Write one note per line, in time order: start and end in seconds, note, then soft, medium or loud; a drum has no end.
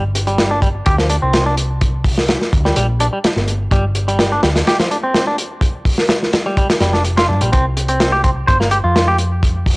0.00 0.81 G1 medium
0.15 closed hi-hat medium
0.27 0.50 G3 medium
0.27 closed hi-hat soft
0.38 snare loud
0.38 closed hi-hat medium
0.51 0.59 D4 loud
0.62 0.68 G3 loud
0.62 kick medium
0.62 closed hi-hat medium
0.86 1.17 D2 medium
0.86 0.95 G4 medium
0.86 kick medium
0.86 closed hi-hat medium
0.98 1.07 F3 medium
0.98 snare soft
1.09 1.15 D4 medium
1.09 closed hi-hat medium
1.22 2.36 C2 medium
1.22 1.45 C4 medium
1.33 snare loud
1.33 closed hi-hat medium
1.46 1.54 D4 medium
1.57 closed hi-hat medium
1.81 kick medium
1.81 closed hi-hat medium
2.04 kick medium
2.04 open hi-hat medium
2.18 snare medium
2.28 snare loud
2.28 closed hi-hat medium
2.41 snare soft
2.53 2.71 D2 medium
2.53 kick loud
2.53 closed hi-hat medium
2.65 2.75 G3 medium
2.65 snare soft
2.76 3.08 A#1 medium
2.76 2.86 G3 medium
2.76 closed hi-hat medium
3.00 3.06 D4 loud
3.00 closed hi-hat medium
3.13 3.18 G3 medium
3.24 snare loud
3.24 closed hi-hat medium
3.36 3.67 G1 medium
3.36 snare soft
3.48 closed hi-hat medium
3.71 4.38 G1 medium
3.71 3.84 G3 loud
3.71 kick medium
3.71 closed hi-hat medium
3.95 closed hi-hat medium
4.08 4.31 G3 medium
4.08 closed hi-hat soft
4.19 snare loud
4.19 closed hi-hat medium
4.32 4.40 D4 loud
4.43 4.61 D2 medium
4.43 4.49 G3 loud
4.43 snare loud
4.43 closed hi-hat medium
4.56 snare medium
4.56 closed hi-hat medium
4.67 4.76 G4 medium
4.67 snare loud
4.67 closed hi-hat medium
4.80 4.88 F3 medium
4.80 snare loud
4.80 closed hi-hat medium
4.91 4.97 D4 medium
4.91 closed hi-hat medium
5.04 5.26 C4 medium
5.15 snare loud
5.15 closed hi-hat medium
5.27 5.36 D4 medium
5.38 closed hi-hat medium
5.61 kick loud
5.61 closed hi-hat medium
5.85 kick medium
5.85 open hi-hat medium
5.98 snare medium
6.09 snare loud
6.09 closed hi-hat medium
6.23 snare soft
6.33 snare loud
6.33 closed hi-hat medium
6.46 6.56 G3 medium
6.57 6.67 G3 medium
6.57 kick medium
6.57 closed hi-hat medium
6.70 snare loud
6.70 closed hi-hat medium
6.81 7.30 F1 medium
6.81 6.93 G3 loud
6.81 snare medium
6.81 closed hi-hat medium
6.93 7.02 D4 medium
6.93 snare soft
7.05 closed hi-hat medium
7.17 7.26 F4 medium
7.17 snare loud
7.17 closed hi-hat medium
7.29 7.43 G2 medium
7.29 7.40 D4 medium
7.41 7.50 A#1 medium
7.41 7.50 G3 medium
7.41 closed hi-hat medium
7.52 8.43 C2 medium
7.52 7.64 C4 medium
7.52 kick medium
7.52 closed hi-hat medium
7.77 closed hi-hat medium
7.88 8.12 C4 medium
7.88 closed hi-hat soft
8.00 snare loud
8.00 closed hi-hat medium
8.12 8.21 G4 medium
8.24 8.30 C4 loud
8.24 kick loud
8.24 closed hi-hat medium
8.47 8.79 G1 medium
8.47 8.57 C5 medium
8.47 kick medium
8.47 closed hi-hat medium
8.60 8.69 A#3 medium
8.60 snare soft
8.71 8.77 G4 medium
8.71 closed hi-hat medium
8.84 9.77 F2 medium
8.84 9.07 F4 medium
8.96 snare loud
8.96 closed hi-hat medium
9.08 9.16 G4 medium
9.18 closed hi-hat medium
9.43 kick medium
9.43 closed hi-hat medium
9.66 kick medium
9.66 open hi-hat medium